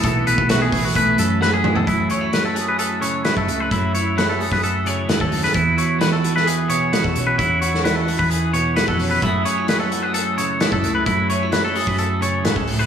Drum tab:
HH |x-x-x-o-x-x-----|x-x-x-x-x-x-x-x-|x-x-x-o-x-x-x-o-|x-x-x-x-x-x-x-x-|
SD |----o-------o---|----o-------o---|----o--o----o--o|----o--o----o---|
T2 |--------------o-|----------------|----------------|----------------|
FT |---------------o|----------------|----------------|----------------|
BD |o--o--o-o-------|o------------o--|o------o-----o--|o------------o--|

HH |x-x-x-o-x-x-x-o-|x-x-x-x-x-x-x-x-|x-x-x-o-x-x-x-o-|
SD |---oo-------o---|----o-------o---|----o-------o---|
T2 |----------------|----------------|----------------|
FT |----------------|----------------|----------------|
BD |o------o-----o--|o------------o--|o------o-----o--|